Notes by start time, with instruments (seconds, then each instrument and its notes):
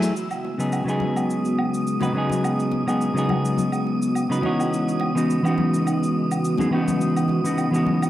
Already playing: analog synth pad E3 F#3 A3 F#4, clean electric guitar F#3 A3 E4 G#4, synth texture E6
0.02 closed hi-hat, cabasa
0.15 analog synth pad C#3 G#3 B3 F#4, synth texture D#6, cabasa
0.31 cabasa, low woodblock
0.44 high bongo
0.58 clean electric guitar C#3 F#3 B3 D#4 G#4, cabasa
0.72 cabasa, low woodblock
0.84 clean electric guitar C#3 F#3 B3 D#4
0.88 clean electric guitar G#4, cabasa
1.00 low conga
1.16 cabasa, low woodblock
1.30 cabasa
1.45 cabasa
1.59 low woodblock
1.74 cabasa
1.87 cabasa
2.00 clean electric guitar C#3 F#3 B3 D#4 B4, high bongo, high conga, low conga, cabasa, low woodblock
2.13 clean electric guitar C#3 F#3 B3
2.17 clean electric guitar D#4 G#4
2.30 low conga, cabasa
2.44 cabasa, low woodblock
2.60 cabasa
2.72 high bongo, high conga
2.86 clean electric guitar C#3 F#3 B3 D#4 G#4, cabasa, low woodblock
3.01 cabasa
3.13 clean electric guitar C#3 F#3 B3 D#4, cabasa
3.18 clean electric guitar G#4
3.29 low conga, low woodblock
3.45 cabasa
3.57 low conga, cabasa
3.72 cabasa, low woodblock
3.87 high bongo
4.02 cabasa
4.15 cabasa, low woodblock
4.29 clean electric guitar C#3 F#3 B3 D#4 B4, cabasa
4.41 clean electric guitar E3 B3 C#4 D#4, high conga
4.46 clean electric guitar F#4
4.60 cabasa, low woodblock
4.72 analog synth pad C#3 E3 D#4, cabasa
4.88 cabasa
5.00 high bongo, low woodblock
5.15 clean electric guitar E3 B3 C#4 D#4 F#4, cabasa
5.30 cabasa
5.43 clean electric guitar E3 B3 C#4 D#4, cabasa, low woodblock
5.47 clean electric guitar F#4
5.58 low conga
5.74 cabasa
5.87 cabasa, low woodblock
6.03 cabasa
6.31 cabasa, low woodblock
6.45 cabasa
6.57 clean electric guitar E3 B3 C#4 D#4 G#4, high bongo, high conga, low conga, cabasa
6.71 clean electric guitar E3 B3 C#4 D#4, low woodblock
6.76 clean electric guitar F#4
6.88 low conga, cabasa
7.01 cabasa
7.17 cabasa, low woodblock
7.28 high bongo, high conga
7.44 clean electric guitar E3 B3 C#4 D#4 F#4, cabasa
7.58 cabasa, low woodblock
7.71 clean electric guitar E3 B3 C#4 D#4, cabasa
7.76 clean electric guitar F#4
7.86 low conga
8.02 cabasa, low woodblock